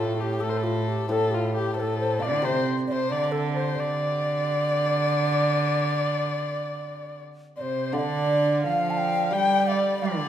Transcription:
Already playing: cello A2, hammered dulcimer A2, xiao F4, erhu A4
0.18 erhu G4, xiao G4 A4
0.41 cello A2, xiao A4, erhu A4
0.50 erhu C5
0.58 erhu A4
0.63 xiao F4
0.88 xiao G4
1.09 hammered dulcimer A2, cello A2, erhu A4, xiao A4 C5
1.31 erhu F4, xiao G4
1.35 xiao F4
1.55 erhu G4, xiao A4
1.59 xiao G4
1.75 cello A2, erhu A4, xiao C5
1.80 xiao A4
1.99 xiao C5
2.20 cello D3, erhu D5, xiao F5
2.25 xiao D5
2.42 hammered dulcimer C3, cello C3, erhu C5, xiao C5 D5
2.87 cello C3, xiao D5
2.92 erhu C5, xiao C5
3.10 cello D3, xiao D5, erhu D5
3.32 xiao A4, erhu A4
3.54 xiao C5, erhu C5
3.75 cello D3, xiao D5
3.80 erhu D5
7.57 cello C3, erhu C5, xiao D5
7.62 xiao C5
7.92 hammered dulcimer D3, cello D3, erhu D5, xiao F5
7.99 xiao D5
8.64 cello F3, erhu F5, xiao F5
8.90 xiao A5
8.98 xiao G5
9.31 hammered dulcimer G3, cello G3, xiao G5, erhu G5
9.68 erhu D5, xiao F5
9.72 xiao D5
10.02 cello D3, erhu D5, xiao F5
10.06 xiao D5

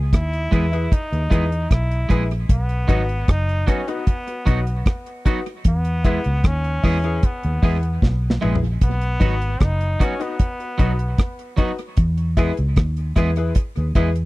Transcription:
Already playing: fingered electric bass C#2
0.13 fingered electric bass D#2, trombone E4, kick, cross-stick, closed hi-hat
0.33 closed hi-hat
0.51 fingered electric bass E2, clean electric guitar G#3 B3 E4 G#4, grand piano E4 G#4 B4, kick, closed hi-hat
0.72 grand piano E4 G#4 B4, closed hi-hat
0.92 trombone D#4, kick, closed hi-hat
1.11 fingered electric bass D#2, grand piano G#4 B4, closed hi-hat
1.30 fingered electric bass E2, clean electric guitar G#3 B3 E4 G#4, grand piano E4 G#4 B4, kick, closed hi-hat
1.52 closed hi-hat
1.71 fingered electric bass B1, trombone E4, kick, cross-stick, closed hi-hat
1.91 closed hi-hat
2.09 fingered electric bass A#1, clean electric guitar G#3 B3 E4 G#4, grand piano E4 G#4 B4, kick, closed hi-hat
2.31 closed hi-hat
2.49 fingered electric bass B1, trombone B3, kick, closed hi-hat
2.69 closed hi-hat
2.88 fingered electric bass G#1, clean electric guitar F#3 B3 D#4 F#4, grand piano D#4 F#4 B4, kick, closed hi-hat
3.09 closed hi-hat
3.28 fingered electric bass F#1, trombone D#4, kick, cross-stick, closed hi-hat
3.49 closed hi-hat
3.67 clean electric guitar F#3 B3 D#4 F#4, trombone C#4, grand piano D#4 F#4 B4, kick, cross-stick, closed hi-hat
3.87 trombone B3, grand piano D#4 F#4 B4, closed hi-hat
4.07 kick, closed hi-hat
4.28 grand piano F#4 B4, closed hi-hat
4.46 fingered electric bass B1, clean electric guitar F#3 B3 D#4 F#4, grand piano D#4 F#4 B4, kick, closed hi-hat
4.67 closed hi-hat
4.86 kick, cross-stick, closed hi-hat
5.06 closed hi-hat
5.25 clean electric guitar F#3 B3 D#4 F#4, grand piano D#4 F#4 B4, kick, closed hi-hat
5.46 closed hi-hat
5.64 fingered electric bass E2, trombone B3, kick, closed hi-hat
5.85 closed hi-hat
6.04 clean electric guitar G#3 B3 E4 G#4, grand piano E4 G#4 B4, kick, closed hi-hat
6.24 fingered electric bass C#2, closed hi-hat
6.44 fingered electric bass D#2, trombone C#4, kick, cross-stick, closed hi-hat
6.64 closed hi-hat
6.83 fingered electric bass E2, clean electric guitar G#3 B3 E4 G#4, grand piano E4 G#4 B4, kick, open hi-hat
7.04 grand piano E4 G#4 B4, closed hi-hat
7.23 trombone B3, kick, closed hi-hat
7.43 fingered electric bass D#2, grand piano G#4 B4, closed hi-hat
7.62 fingered electric bass E2, clean electric guitar G#3 B3 E4 G#4, grand piano E4 G#4 B4, kick, open hi-hat
7.83 closed hi-hat
8.02 fingered electric bass B1, kick, snare
8.30 snare
8.41 fingered electric bass A#1, clean electric guitar G#3 B3 E4 G#4, grand piano E4 G#4 B4, mid tom
8.55 floor tom
8.81 fingered electric bass B1, trombone B3, kick, closed hi-hat
9.01 closed hi-hat
9.20 fingered electric bass G#1, clean electric guitar F#3 B3 D#4 F#4, grand piano D#4 F#4 B4, kick, closed hi-hat
9.41 closed hi-hat
9.60 fingered electric bass F#1, trombone D#4, kick, cross-stick, closed hi-hat
9.81 closed hi-hat
10.00 clean electric guitar F#3 B3 D#4 F#4, trombone C#4, grand piano D#4 F#4 B4, kick, closed hi-hat
10.19 trombone B3, grand piano D#4 F#4 B4, closed hi-hat
10.39 kick, closed hi-hat
10.60 grand piano F#4 B4, closed hi-hat
10.78 fingered electric bass B1, clean electric guitar F#3 B3 D#4 F#4, grand piano D#4 F#4 B4, kick, closed hi-hat
10.99 closed hi-hat
11.18 kick, cross-stick, closed hi-hat
11.39 closed hi-hat
11.57 clean electric guitar F#3 B3 D#4 F#4, grand piano D#4 F#4 B4, kick, closed hi-hat
11.78 closed hi-hat
11.97 fingered electric bass E2, kick, closed hi-hat
12.17 closed hi-hat
12.37 clean electric guitar G#3 B3 E4 G#4, grand piano E4 G#4 B4, kick, closed hi-hat
12.57 fingered electric bass C#2, closed hi-hat
12.76 fingered electric bass D#2, kick, cross-stick, closed hi-hat
12.97 closed hi-hat
13.16 fingered electric bass E2, clean electric guitar G#3 B3 E4 G#4, grand piano E4 G#4 B4, kick, cross-stick, closed hi-hat
13.36 grand piano E4 G#4 B4, closed hi-hat
13.55 kick, closed hi-hat
13.76 fingered electric bass D#2, grand piano G#4 B4, closed hi-hat
13.95 fingered electric bass E2, clean electric guitar G#3 B3 E4 G#4, grand piano E4 G#4 B4, kick, closed hi-hat
14.16 closed hi-hat

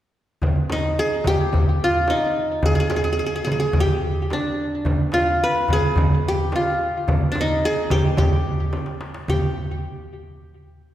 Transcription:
0.42 darbuka dum, frame drum
0.56 darbuka ka
0.70 qanun D#4, darbuka tek, frame drum
0.98 qanun G#4, darbuka ka
1.24 qanun G4, frame drum, darbuka dum
1.53 frame drum, darbuka dum
1.67 darbuka ka
1.84 qanun F4
1.95 darbuka ka
2.08 qanun D#4, darbuka tek, frame drum
2.36 darbuka ka
2.63 qanun G#4, darbuka dum, frame drum
2.75 qanun G#4, darbuka ka
2.80 qanun G#4
2.90 qanun G#4, darbuka tek, frame drum
2.96 qanun G#4
3.04 qanun G#4
3.13 qanun G#4
3.18 qanun G#4, darbuka ka
3.26 qanun G#4
3.36 qanun G#4
3.45 qanun G#4, frame drum
3.52 qanun G#4
3.60 qanun G#4
3.73 darbuka dum, frame drum
3.80 qanun G4
3.88 darbuka ka
4.16 darbuka ka
4.30 qanun D4, darbuka tek, frame drum
4.58 darbuka ka
4.85 darbuka dum, frame drum
4.98 darbuka ka
5.12 qanun F4, darbuka tek, frame drum
5.40 qanun B4, darbuka ka
5.68 darbuka dum, frame drum
5.73 qanun G#4
5.96 darbuka dum, frame drum
6.28 qanun G4
6.38 darbuka ka
6.52 qanun F4, darbuka tek, frame drum
6.80 darbuka ka
7.08 darbuka dum, frame drum
7.32 qanun D4, frame drum
7.36 darbuka tek
7.41 qanun D#4
7.64 qanun G#4, darbuka ka
7.76 darbuka ka
7.90 qanun G4, frame drum, darbuka dum
8.17 qanun G4, frame drum, darbuka dum
8.32 darbuka ka
8.60 darbuka ka
8.73 darbuka tek, frame drum
8.86 darbuka ka
9.01 darbuka tek
9.14 darbuka ka
9.28 qanun G4, frame drum, darbuka dum

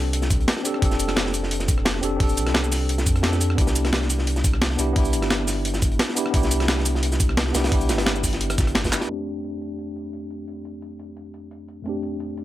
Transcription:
Already playing: sub bass C2, tine electric piano C4 D4 G4 A4
0.13 closed hi-hat
0.22 snare, shaker
0.30 kick, closed hi-hat, shaker
0.40 closed hi-hat
0.48 snare, closed hi-hat
0.57 snare
0.63 tine electric piano C4 D4 G4 A4, closed hi-hat, shaker
0.74 cross-stick
0.79 sub bass F1, tine electric piano C4 D4, kick, closed hi-hat
0.83 tine electric piano G4 A4
0.91 snare, shaker
1.00 closed hi-hat, shaker
1.08 cross-stick, snare, closed hi-hat
1.16 snare, closed hi-hat
1.26 snare
1.34 closed hi-hat, shaker
1.43 snare
1.51 closed hi-hat
1.60 snare, shaker
1.68 kick, closed hi-hat, shaker
1.78 cross-stick
1.85 snare, closed hi-hat
1.95 snare
2.01 sub bass F1, tine electric piano C4 D4 G4 A4, closed hi-hat, shaker
2.17 sub bass F1, tine electric piano C4 D4, kick, closed hi-hat, open hi-hat
2.21 tine electric piano G4 A4
2.29 shaker
2.37 sub bass C2, closed hi-hat, shaker
2.47 cross-stick, snare, closed hi-hat
2.54 snare, closed hi-hat
2.64 shaker
2.72 snare, closed hi-hat, open hi-hat, shaker
2.89 closed hi-hat
2.98 snare, shaker
3.06 sub bass F2, kick, closed hi-hat, shaker
3.15 cross-stick, closed hi-hat
3.22 tine electric piano C4 D4 G4 A4, snare, closed hi-hat
3.33 snare, shaker
3.41 closed hi-hat, shaker
3.50 cross-stick
3.55 sub bass C2, tine electric piano B3 D4, kick, closed hi-hat
3.59 tine electric piano E4 G4
3.67 snare, shaker
3.75 closed hi-hat, shaker
3.85 cross-stick, snare, closed hi-hat
3.93 snare, closed hi-hat
4.02 snare
4.10 closed hi-hat, shaker
4.18 snare
4.27 closed hi-hat
4.36 snare, shaker
4.44 kick, closed hi-hat, shaker
4.53 cross-stick
4.62 snare, closed hi-hat
4.71 snare
4.77 sub bass C2, tine electric piano B3 D4 E4 G4, closed hi-hat, shaker
4.93 sub bass C2, tine electric piano B3 D4, kick, closed hi-hat, open hi-hat
4.97 tine electric piano E4 G4
5.05 shaker
5.13 sub bass G1, closed hi-hat, shaker
5.22 cross-stick, snare, closed hi-hat
5.30 snare, closed hi-hat
5.47 snare, closed hi-hat, open hi-hat, shaker
5.65 closed hi-hat
5.74 snare, shaker
5.82 kick, closed hi-hat, shaker
5.91 closed hi-hat
5.99 snare, closed hi-hat
6.09 snare
6.15 tine electric piano B3 D4 E4 G4, closed hi-hat, shaker
6.26 cross-stick
6.30 sub bass C2, tine electric piano B3 D4, kick, closed hi-hat
6.35 tine electric piano E4 G4
6.43 snare, shaker
6.51 closed hi-hat, shaker
6.60 cross-stick, snare, closed hi-hat
6.68 snare, closed hi-hat
6.78 snare
6.86 closed hi-hat, shaker
6.95 snare
7.03 closed hi-hat
7.12 snare, shaker
7.20 kick, closed hi-hat, shaker
7.29 cross-stick
7.37 snare, closed hi-hat
7.47 snare
7.53 sub bass C2, tine electric piano B3 D4 E4 G4, snare, closed hi-hat, shaker
7.64 snare, closed hi-hat
7.69 sub bass C2, tine electric piano B3 D4, kick, closed hi-hat, open hi-hat
7.73 tine electric piano E4 G4
7.81 shaker
7.89 sub bass G1, snare, closed hi-hat, shaker
7.98 cross-stick, snare, closed hi-hat
8.06 snare, closed hi-hat
8.16 shaker
8.24 kick, closed hi-hat, open hi-hat, shaker
8.33 snare, closed hi-hat
8.41 closed hi-hat
8.50 cross-stick, closed hi-hat, shaker
8.58 sub bass G1, kick, snare, closed hi-hat, shaker
8.67 cross-stick, closed hi-hat
8.75 snare, closed hi-hat
8.84 kick, snare, closed hi-hat, shaker
8.91 tine electric piano B3 D4 E4 G4, snare, clap, closed hi-hat, shaker
9.01 snare, closed hi-hat
9.06 tine electric piano F2 A3 C4, closed hi-hat
9.12 tine electric piano D4 G4
9.27 closed hi-hat
9.44 closed hi-hat
9.53 shaker
9.62 closed hi-hat, shaker
9.79 closed hi-hat
9.88 shaker
9.96 closed hi-hat, shaker
10.13 closed hi-hat
10.31 closed hi-hat, shaker
10.48 closed hi-hat
10.57 shaker
10.65 closed hi-hat, shaker
10.82 closed hi-hat
10.91 shaker
10.99 closed hi-hat, shaker
11.17 closed hi-hat
11.26 shaker
11.34 closed hi-hat, shaker
11.51 closed hi-hat
11.68 closed hi-hat, shaker
11.82 tine electric piano F2 A3 C4, closed hi-hat
11.87 tine electric piano D4 G4
11.95 shaker
12.03 closed hi-hat, shaker
12.20 closed hi-hat
12.29 shaker
12.37 closed hi-hat, shaker

